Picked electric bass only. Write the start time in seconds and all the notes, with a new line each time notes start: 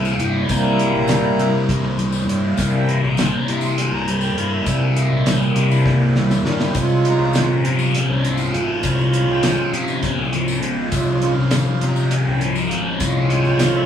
Already playing: C2
0.21 G2
0.50 C2
0.95 A#1
1.39 C3
1.84 C2
2.28 G2
2.59 C2
3.04 A#1
3.48 C3
3.92 C2
4.37 G2
4.67 C2
5.11 A#1
5.56 C3
6.00 C2
6.45 G2
6.76 C2
7.18 C2
7.64 C3
8.10 C2
8.53 G#1
8.84 C2
9.28 C2
9.73 C3
10.18 C2
10.63 G#1
10.92 C2
11.38 C2
11.83 C3
12.27 C2
12.73 G#1
13.01 C2
13.47 C2